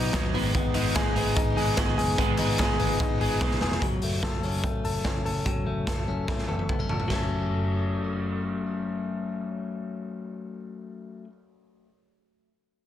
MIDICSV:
0, 0, Header, 1, 5, 480
1, 0, Start_track
1, 0, Tempo, 410678
1, 642, Time_signature, 4, 2, 24, 8
1, 15034, End_track
2, 0, Start_track
2, 0, Title_t, "Clean electric guitar"
2, 0, Program_c, 0, 27
2, 0, Note_on_c, 0, 54, 64
2, 0, Note_on_c, 0, 59, 64
2, 0, Note_on_c, 0, 63, 63
2, 151, Note_off_c, 0, 54, 0
2, 166, Note_on_c, 0, 54, 61
2, 398, Note_off_c, 0, 59, 0
2, 402, Note_on_c, 0, 59, 86
2, 451, Note_off_c, 0, 54, 0
2, 626, Note_off_c, 0, 59, 0
2, 640, Note_on_c, 0, 59, 90
2, 873, Note_off_c, 0, 63, 0
2, 878, Note_on_c, 0, 63, 65
2, 1119, Note_on_c, 0, 68, 73
2, 1341, Note_off_c, 0, 59, 0
2, 1355, Note_on_c, 0, 59, 66
2, 1577, Note_off_c, 0, 63, 0
2, 1591, Note_on_c, 0, 63, 69
2, 1820, Note_off_c, 0, 68, 0
2, 1834, Note_on_c, 0, 68, 65
2, 2052, Note_off_c, 0, 59, 0
2, 2066, Note_on_c, 0, 59, 66
2, 2298, Note_off_c, 0, 68, 0
2, 2312, Note_on_c, 0, 68, 77
2, 2539, Note_off_c, 0, 59, 0
2, 2553, Note_on_c, 0, 59, 93
2, 2776, Note_off_c, 0, 63, 0
2, 2790, Note_on_c, 0, 63, 62
2, 3017, Note_off_c, 0, 68, 0
2, 3031, Note_on_c, 0, 68, 75
2, 3255, Note_off_c, 0, 59, 0
2, 3269, Note_on_c, 0, 59, 62
2, 3494, Note_off_c, 0, 63, 0
2, 3508, Note_on_c, 0, 63, 64
2, 3738, Note_off_c, 0, 68, 0
2, 3752, Note_on_c, 0, 68, 60
2, 3978, Note_off_c, 0, 59, 0
2, 3992, Note_on_c, 0, 59, 62
2, 4217, Note_off_c, 0, 68, 0
2, 4231, Note_on_c, 0, 68, 73
2, 4470, Note_on_c, 0, 54, 79
2, 4512, Note_off_c, 0, 63, 0
2, 4514, Note_off_c, 0, 59, 0
2, 4514, Note_off_c, 0, 68, 0
2, 4714, Note_on_c, 0, 57, 55
2, 4948, Note_on_c, 0, 69, 61
2, 5188, Note_on_c, 0, 61, 53
2, 5419, Note_off_c, 0, 57, 0
2, 5424, Note_on_c, 0, 57, 58
2, 5661, Note_off_c, 0, 69, 0
2, 5666, Note_on_c, 0, 69, 57
2, 5895, Note_off_c, 0, 61, 0
2, 5900, Note_on_c, 0, 61, 54
2, 6138, Note_off_c, 0, 69, 0
2, 6143, Note_on_c, 0, 69, 60
2, 6374, Note_off_c, 0, 54, 0
2, 6379, Note_on_c, 0, 54, 71
2, 6618, Note_off_c, 0, 57, 0
2, 6623, Note_on_c, 0, 57, 52
2, 6860, Note_off_c, 0, 69, 0
2, 6865, Note_on_c, 0, 69, 63
2, 7102, Note_off_c, 0, 61, 0
2, 7106, Note_on_c, 0, 61, 55
2, 7338, Note_off_c, 0, 57, 0
2, 7342, Note_on_c, 0, 57, 58
2, 7574, Note_off_c, 0, 69, 0
2, 7579, Note_on_c, 0, 69, 56
2, 7819, Note_off_c, 0, 61, 0
2, 7823, Note_on_c, 0, 59, 48
2, 7946, Note_off_c, 0, 59, 0
2, 7946, Note_on_c, 0, 61, 45
2, 8058, Note_off_c, 0, 69, 0
2, 8062, Note_on_c, 0, 69, 58
2, 8270, Note_off_c, 0, 54, 0
2, 8275, Note_on_c, 0, 54, 68
2, 8306, Note_off_c, 0, 57, 0
2, 8311, Note_on_c, 0, 57, 70
2, 8324, Note_off_c, 0, 61, 0
2, 8338, Note_on_c, 0, 61, 78
2, 8363, Note_off_c, 0, 69, 0
2, 8367, Note_on_c, 0, 69, 80
2, 13138, Note_off_c, 0, 54, 0
2, 13174, Note_off_c, 0, 57, 0
2, 13202, Note_off_c, 0, 61, 0
2, 13231, Note_off_c, 0, 69, 0
2, 15034, End_track
3, 0, Start_track
3, 0, Title_t, "Clean electric guitar"
3, 0, Program_c, 1, 27
3, 0, Note_on_c, 1, 54, 50
3, 0, Note_on_c, 1, 59, 57
3, 0, Note_on_c, 1, 63, 66
3, 150, Note_off_c, 1, 54, 0
3, 151, Note_on_c, 1, 47, 74
3, 161, Note_off_c, 1, 59, 0
3, 163, Note_off_c, 1, 63, 0
3, 164, Note_on_c, 1, 54, 82
3, 175, Note_on_c, 1, 59, 75
3, 178, Note_on_c, 1, 63, 84
3, 385, Note_off_c, 1, 63, 0
3, 391, Note_off_c, 1, 59, 0
3, 396, Note_off_c, 1, 47, 0
3, 399, Note_on_c, 1, 63, 74
3, 403, Note_off_c, 1, 54, 0
3, 405, Note_on_c, 1, 59, 78
3, 410, Note_on_c, 1, 56, 75
3, 415, Note_on_c, 1, 51, 68
3, 419, Note_on_c, 1, 44, 68
3, 853, Note_off_c, 1, 63, 0
3, 867, Note_on_c, 1, 63, 65
3, 873, Note_off_c, 1, 59, 0
3, 879, Note_off_c, 1, 56, 0
3, 886, Note_off_c, 1, 51, 0
3, 887, Note_on_c, 1, 59, 55
3, 888, Note_off_c, 1, 44, 0
3, 893, Note_on_c, 1, 56, 54
3, 1107, Note_off_c, 1, 56, 0
3, 1108, Note_on_c, 1, 51, 68
3, 1112, Note_off_c, 1, 63, 0
3, 1117, Note_off_c, 1, 59, 0
3, 1121, Note_on_c, 1, 56, 66
3, 1131, Note_on_c, 1, 59, 75
3, 1137, Note_on_c, 1, 63, 86
3, 1331, Note_off_c, 1, 63, 0
3, 1346, Note_on_c, 1, 63, 63
3, 1349, Note_off_c, 1, 59, 0
3, 1352, Note_off_c, 1, 51, 0
3, 1359, Note_off_c, 1, 56, 0
3, 1363, Note_on_c, 1, 59, 56
3, 1373, Note_on_c, 1, 56, 48
3, 1809, Note_off_c, 1, 63, 0
3, 1823, Note_on_c, 1, 63, 66
3, 1827, Note_off_c, 1, 59, 0
3, 1836, Note_off_c, 1, 56, 0
3, 1841, Note_on_c, 1, 59, 57
3, 1850, Note_on_c, 1, 56, 51
3, 2053, Note_off_c, 1, 56, 0
3, 2059, Note_on_c, 1, 51, 77
3, 2064, Note_off_c, 1, 59, 0
3, 2067, Note_on_c, 1, 56, 76
3, 2068, Note_off_c, 1, 63, 0
3, 2078, Note_on_c, 1, 59, 90
3, 2086, Note_on_c, 1, 63, 83
3, 2528, Note_off_c, 1, 51, 0
3, 2535, Note_off_c, 1, 56, 0
3, 2539, Note_off_c, 1, 59, 0
3, 2539, Note_on_c, 1, 44, 92
3, 2540, Note_off_c, 1, 63, 0
3, 2542, Note_on_c, 1, 51, 95
3, 2549, Note_on_c, 1, 56, 93
3, 2553, Note_on_c, 1, 59, 100
3, 2554, Note_on_c, 1, 63, 92
3, 2776, Note_off_c, 1, 63, 0
3, 2784, Note_off_c, 1, 44, 0
3, 2785, Note_off_c, 1, 51, 0
3, 2785, Note_off_c, 1, 59, 0
3, 2789, Note_off_c, 1, 56, 0
3, 2790, Note_on_c, 1, 63, 59
3, 2799, Note_on_c, 1, 59, 56
3, 2814, Note_on_c, 1, 56, 52
3, 3018, Note_off_c, 1, 56, 0
3, 3021, Note_on_c, 1, 51, 64
3, 3024, Note_off_c, 1, 59, 0
3, 3029, Note_off_c, 1, 63, 0
3, 3032, Note_on_c, 1, 56, 68
3, 3038, Note_on_c, 1, 59, 80
3, 3053, Note_on_c, 1, 63, 70
3, 3252, Note_off_c, 1, 63, 0
3, 3264, Note_off_c, 1, 51, 0
3, 3266, Note_on_c, 1, 63, 65
3, 3268, Note_off_c, 1, 59, 0
3, 3269, Note_off_c, 1, 56, 0
3, 3282, Note_on_c, 1, 59, 57
3, 3293, Note_on_c, 1, 56, 49
3, 3725, Note_off_c, 1, 63, 0
3, 3739, Note_on_c, 1, 63, 56
3, 3741, Note_off_c, 1, 59, 0
3, 3750, Note_off_c, 1, 56, 0
3, 3755, Note_on_c, 1, 59, 50
3, 3764, Note_on_c, 1, 56, 55
3, 3979, Note_off_c, 1, 56, 0
3, 3981, Note_off_c, 1, 63, 0
3, 3985, Note_on_c, 1, 51, 73
3, 3989, Note_off_c, 1, 59, 0
3, 3993, Note_on_c, 1, 56, 80
3, 4002, Note_on_c, 1, 59, 84
3, 4012, Note_on_c, 1, 63, 80
3, 4463, Note_off_c, 1, 51, 0
3, 4467, Note_off_c, 1, 56, 0
3, 4471, Note_off_c, 1, 59, 0
3, 4476, Note_off_c, 1, 63, 0
3, 15034, End_track
4, 0, Start_track
4, 0, Title_t, "Picked electric bass"
4, 0, Program_c, 2, 34
4, 163, Note_on_c, 2, 39, 103
4, 359, Note_off_c, 2, 39, 0
4, 397, Note_on_c, 2, 32, 99
4, 791, Note_off_c, 2, 32, 0
4, 878, Note_on_c, 2, 32, 98
4, 1173, Note_off_c, 2, 32, 0
4, 1351, Note_on_c, 2, 32, 91
4, 1550, Note_off_c, 2, 32, 0
4, 1597, Note_on_c, 2, 32, 107
4, 1792, Note_off_c, 2, 32, 0
4, 1830, Note_on_c, 2, 32, 90
4, 2028, Note_off_c, 2, 32, 0
4, 2077, Note_on_c, 2, 32, 105
4, 2272, Note_off_c, 2, 32, 0
4, 2307, Note_on_c, 2, 30, 83
4, 2505, Note_off_c, 2, 30, 0
4, 2555, Note_on_c, 2, 32, 117
4, 2749, Note_off_c, 2, 32, 0
4, 2789, Note_on_c, 2, 32, 106
4, 3083, Note_off_c, 2, 32, 0
4, 3272, Note_on_c, 2, 32, 108
4, 3466, Note_off_c, 2, 32, 0
4, 3505, Note_on_c, 2, 32, 115
4, 3702, Note_off_c, 2, 32, 0
4, 3746, Note_on_c, 2, 32, 94
4, 3942, Note_off_c, 2, 32, 0
4, 3984, Note_on_c, 2, 35, 99
4, 4181, Note_off_c, 2, 35, 0
4, 4226, Note_on_c, 2, 28, 84
4, 4421, Note_off_c, 2, 28, 0
4, 4466, Note_on_c, 2, 30, 93
4, 4661, Note_off_c, 2, 30, 0
4, 4703, Note_on_c, 2, 30, 84
4, 4899, Note_off_c, 2, 30, 0
4, 5182, Note_on_c, 2, 30, 89
4, 5476, Note_off_c, 2, 30, 0
4, 5659, Note_on_c, 2, 30, 84
4, 5856, Note_off_c, 2, 30, 0
4, 5901, Note_on_c, 2, 30, 85
4, 6097, Note_off_c, 2, 30, 0
4, 6143, Note_on_c, 2, 30, 78
4, 6339, Note_off_c, 2, 30, 0
4, 6379, Note_on_c, 2, 30, 93
4, 6576, Note_off_c, 2, 30, 0
4, 6624, Note_on_c, 2, 30, 88
4, 6819, Note_off_c, 2, 30, 0
4, 6862, Note_on_c, 2, 30, 76
4, 7058, Note_off_c, 2, 30, 0
4, 7108, Note_on_c, 2, 30, 84
4, 7400, Note_off_c, 2, 30, 0
4, 7591, Note_on_c, 2, 30, 78
4, 7784, Note_off_c, 2, 30, 0
4, 7823, Note_on_c, 2, 30, 87
4, 8019, Note_off_c, 2, 30, 0
4, 8071, Note_on_c, 2, 30, 75
4, 8264, Note_off_c, 2, 30, 0
4, 8302, Note_on_c, 2, 30, 78
4, 13119, Note_off_c, 2, 30, 0
4, 15034, End_track
5, 0, Start_track
5, 0, Title_t, "Drums"
5, 154, Note_on_c, 9, 38, 111
5, 159, Note_on_c, 9, 51, 56
5, 162, Note_on_c, 9, 36, 124
5, 168, Note_on_c, 9, 39, 84
5, 271, Note_off_c, 9, 38, 0
5, 276, Note_off_c, 9, 51, 0
5, 279, Note_off_c, 9, 36, 0
5, 285, Note_off_c, 9, 39, 0
5, 405, Note_on_c, 9, 46, 70
5, 522, Note_off_c, 9, 46, 0
5, 638, Note_on_c, 9, 44, 68
5, 638, Note_on_c, 9, 51, 54
5, 640, Note_on_c, 9, 36, 98
5, 755, Note_off_c, 9, 44, 0
5, 755, Note_off_c, 9, 51, 0
5, 757, Note_off_c, 9, 36, 0
5, 871, Note_on_c, 9, 46, 85
5, 874, Note_on_c, 9, 39, 78
5, 988, Note_off_c, 9, 46, 0
5, 991, Note_off_c, 9, 39, 0
5, 1116, Note_on_c, 9, 39, 88
5, 1119, Note_on_c, 9, 36, 120
5, 1119, Note_on_c, 9, 44, 69
5, 1120, Note_on_c, 9, 38, 127
5, 1120, Note_on_c, 9, 51, 65
5, 1233, Note_off_c, 9, 39, 0
5, 1235, Note_off_c, 9, 44, 0
5, 1236, Note_off_c, 9, 36, 0
5, 1237, Note_off_c, 9, 38, 0
5, 1237, Note_off_c, 9, 51, 0
5, 1356, Note_on_c, 9, 46, 79
5, 1473, Note_off_c, 9, 46, 0
5, 1594, Note_on_c, 9, 44, 75
5, 1595, Note_on_c, 9, 51, 69
5, 1596, Note_on_c, 9, 36, 125
5, 1711, Note_off_c, 9, 44, 0
5, 1712, Note_off_c, 9, 51, 0
5, 1713, Note_off_c, 9, 36, 0
5, 1842, Note_on_c, 9, 46, 73
5, 1958, Note_off_c, 9, 46, 0
5, 2072, Note_on_c, 9, 38, 113
5, 2076, Note_on_c, 9, 36, 124
5, 2076, Note_on_c, 9, 51, 58
5, 2079, Note_on_c, 9, 39, 88
5, 2189, Note_off_c, 9, 38, 0
5, 2193, Note_off_c, 9, 36, 0
5, 2193, Note_off_c, 9, 51, 0
5, 2196, Note_off_c, 9, 39, 0
5, 2322, Note_on_c, 9, 46, 64
5, 2439, Note_off_c, 9, 46, 0
5, 2552, Note_on_c, 9, 36, 99
5, 2553, Note_on_c, 9, 44, 66
5, 2553, Note_on_c, 9, 51, 60
5, 2669, Note_off_c, 9, 36, 0
5, 2670, Note_off_c, 9, 44, 0
5, 2670, Note_off_c, 9, 51, 0
5, 2782, Note_on_c, 9, 39, 80
5, 2783, Note_on_c, 9, 46, 79
5, 2899, Note_off_c, 9, 39, 0
5, 2900, Note_off_c, 9, 46, 0
5, 3026, Note_on_c, 9, 39, 89
5, 3030, Note_on_c, 9, 36, 111
5, 3033, Note_on_c, 9, 51, 67
5, 3034, Note_on_c, 9, 38, 127
5, 3143, Note_off_c, 9, 39, 0
5, 3147, Note_off_c, 9, 36, 0
5, 3150, Note_off_c, 9, 51, 0
5, 3151, Note_off_c, 9, 38, 0
5, 3268, Note_on_c, 9, 46, 77
5, 3385, Note_off_c, 9, 46, 0
5, 3506, Note_on_c, 9, 44, 72
5, 3507, Note_on_c, 9, 36, 127
5, 3507, Note_on_c, 9, 51, 68
5, 3623, Note_off_c, 9, 36, 0
5, 3623, Note_off_c, 9, 44, 0
5, 3624, Note_off_c, 9, 51, 0
5, 3750, Note_on_c, 9, 46, 70
5, 3867, Note_off_c, 9, 46, 0
5, 3982, Note_on_c, 9, 38, 62
5, 3985, Note_on_c, 9, 36, 124
5, 3991, Note_on_c, 9, 39, 82
5, 4099, Note_off_c, 9, 38, 0
5, 4102, Note_off_c, 9, 36, 0
5, 4102, Note_on_c, 9, 38, 69
5, 4108, Note_off_c, 9, 39, 0
5, 4219, Note_off_c, 9, 38, 0
5, 4222, Note_on_c, 9, 38, 106
5, 4338, Note_off_c, 9, 38, 0
5, 4342, Note_on_c, 9, 38, 98
5, 4459, Note_off_c, 9, 38, 0
5, 4463, Note_on_c, 9, 42, 64
5, 4464, Note_on_c, 9, 36, 94
5, 4580, Note_off_c, 9, 42, 0
5, 4581, Note_off_c, 9, 36, 0
5, 4696, Note_on_c, 9, 46, 68
5, 4813, Note_off_c, 9, 46, 0
5, 4941, Note_on_c, 9, 36, 100
5, 4942, Note_on_c, 9, 38, 112
5, 4942, Note_on_c, 9, 42, 68
5, 5058, Note_off_c, 9, 36, 0
5, 5058, Note_off_c, 9, 42, 0
5, 5059, Note_off_c, 9, 38, 0
5, 5181, Note_on_c, 9, 46, 72
5, 5298, Note_off_c, 9, 46, 0
5, 5419, Note_on_c, 9, 36, 113
5, 5419, Note_on_c, 9, 42, 71
5, 5536, Note_off_c, 9, 36, 0
5, 5536, Note_off_c, 9, 42, 0
5, 5665, Note_on_c, 9, 46, 58
5, 5782, Note_off_c, 9, 46, 0
5, 5897, Note_on_c, 9, 38, 98
5, 5901, Note_on_c, 9, 36, 98
5, 5902, Note_on_c, 9, 42, 57
5, 6014, Note_off_c, 9, 38, 0
5, 6018, Note_off_c, 9, 36, 0
5, 6019, Note_off_c, 9, 42, 0
5, 6147, Note_on_c, 9, 46, 54
5, 6264, Note_off_c, 9, 46, 0
5, 6380, Note_on_c, 9, 42, 60
5, 6381, Note_on_c, 9, 36, 91
5, 6497, Note_off_c, 9, 42, 0
5, 6498, Note_off_c, 9, 36, 0
5, 6862, Note_on_c, 9, 36, 94
5, 6865, Note_on_c, 9, 42, 68
5, 6866, Note_on_c, 9, 38, 102
5, 6979, Note_off_c, 9, 36, 0
5, 6982, Note_off_c, 9, 38, 0
5, 6982, Note_off_c, 9, 42, 0
5, 7340, Note_on_c, 9, 38, 49
5, 7342, Note_on_c, 9, 36, 98
5, 7457, Note_off_c, 9, 38, 0
5, 7458, Note_on_c, 9, 38, 42
5, 7459, Note_off_c, 9, 36, 0
5, 7575, Note_off_c, 9, 38, 0
5, 7583, Note_on_c, 9, 48, 57
5, 7700, Note_off_c, 9, 48, 0
5, 7703, Note_on_c, 9, 48, 51
5, 7820, Note_off_c, 9, 48, 0
5, 7820, Note_on_c, 9, 47, 64
5, 7823, Note_on_c, 9, 36, 96
5, 7937, Note_off_c, 9, 47, 0
5, 7937, Note_on_c, 9, 45, 61
5, 7939, Note_off_c, 9, 36, 0
5, 8054, Note_off_c, 9, 45, 0
5, 8058, Note_on_c, 9, 43, 81
5, 8175, Note_off_c, 9, 43, 0
5, 8178, Note_on_c, 9, 43, 73
5, 8295, Note_off_c, 9, 43, 0
5, 8298, Note_on_c, 9, 38, 73
5, 8300, Note_on_c, 9, 49, 66
5, 8302, Note_on_c, 9, 36, 72
5, 8415, Note_off_c, 9, 38, 0
5, 8417, Note_off_c, 9, 49, 0
5, 8418, Note_off_c, 9, 36, 0
5, 15034, End_track
0, 0, End_of_file